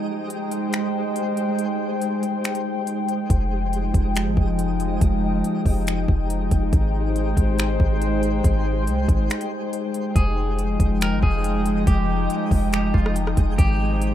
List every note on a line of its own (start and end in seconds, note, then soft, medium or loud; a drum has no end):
0.00 3.27 G#3 medium
0.00 6.69 G#3 medium
0.00 3.26 D#4 medium
0.00 3.26 G4 medium
0.00 3.27 C5 medium
0.00 6.69 G5 loud
0.30 closed hi-hat medium
0.51 closed hi-hat medium
0.73 finger snap loud
0.73 closed hi-hat medium
1.16 closed hi-hat medium
1.37 closed hi-hat medium
1.59 closed hi-hat medium
2.02 closed hi-hat medium
2.23 closed hi-hat medium
2.44 finger snap loud
2.44 closed hi-hat medium
2.55 closed hi-hat medium
2.87 closed hi-hat medium
3.09 closed hi-hat medium
3.30 3.92 F1 loud
3.30 6.70 F3 medium
3.30 6.70 G#3 medium
3.30 10.12 D#4 medium
3.30 10.12 G4 medium
3.30 6.70 D#5 medium
3.30 kick loud
3.30 closed hi-hat medium
3.73 closed hi-hat medium
3.94 4.28 F1 loud
3.94 kick medium
3.94 closed hi-hat medium
4.16 finger snap loud
4.16 closed hi-hat medium
4.26 4.36 G#1 loud
4.37 4.99 F1 loud
4.37 kick loud
4.59 closed hi-hat medium
4.80 closed hi-hat medium
5.01 5.43 F1 loud
5.01 kick loud
5.01 closed hi-hat medium
5.44 closed hi-hat medium
5.66 6.07 F1 loud
5.66 kick medium
5.66 open hi-hat medium
5.87 finger snap loud
5.87 closed hi-hat medium
6.08 6.50 F1 loud
6.08 kick medium
6.30 closed hi-hat medium
6.51 6.72 F1 loud
6.51 kick loud
6.51 closed hi-hat medium
6.73 7.35 G#1 loud
6.73 10.12 G#3 medium
6.73 10.12 C5 medium
6.73 10.12 G5 loud
6.73 kick loud
6.73 closed hi-hat medium
7.16 closed hi-hat medium
7.37 7.78 G#1 loud
7.37 kick loud
7.37 closed hi-hat medium
7.59 finger snap loud
7.59 closed hi-hat medium
7.80 8.42 G#1 loud
7.80 kick loud
8.02 closed hi-hat medium
8.23 closed hi-hat medium
8.44 8.89 G#1 loud
8.44 kick loud
8.44 closed hi-hat medium
8.87 9.08 C2 loud
8.87 closed hi-hat medium
9.09 9.29 G#1 loud
9.09 kick loud
9.09 closed hi-hat medium
9.30 finger snap loud
9.30 closed hi-hat medium
9.41 closed hi-hat medium
9.73 closed hi-hat medium
9.94 closed hi-hat medium
10.16 10.77 F1 loud
10.16 13.55 F3 medium
10.16 13.55 G#3 loud
10.16 14.14 G#3 medium
10.16 14.14 D#4 medium
10.16 10.97 G#4 medium
10.16 13.55 D#5 medium
10.16 13.55 G5 medium
10.16 14.14 G5 medium
10.16 kick loud
10.16 closed hi-hat medium
10.59 closed hi-hat medium
10.80 11.14 F1 loud
10.80 kick loud
10.80 closed hi-hat medium
11.01 11.22 A#4 medium
11.01 finger snap loud
11.01 closed hi-hat medium
11.12 11.22 G#1 medium
11.23 11.84 F1 loud
11.23 11.83 G#4 medium
11.23 kick loud
11.44 closed hi-hat medium
11.66 closed hi-hat medium
11.87 12.28 F1 loud
11.87 12.69 G4 loud
11.87 kick loud
11.87 closed hi-hat medium
12.30 closed hi-hat medium
12.51 12.92 F1 loud
12.51 kick medium
12.51 open hi-hat medium
12.73 12.93 G4 medium
12.73 finger snap loud
12.73 closed hi-hat medium
12.94 13.35 F1 loud
12.94 13.14 F4 medium
12.94 kick loud
13.06 cross-stick loud
13.16 closed hi-hat medium
13.27 cross-stick medium
13.37 13.58 F1 loud
13.37 kick loud
13.37 closed hi-hat medium
13.58 14.14 G#1 loud
13.58 14.14 G#3 medium
13.58 14.14 G4 loud
13.58 14.14 C5 loud
13.58 14.14 C5 medium
13.58 14.14 G5 medium
13.58 kick loud
13.58 closed hi-hat medium
14.02 closed hi-hat medium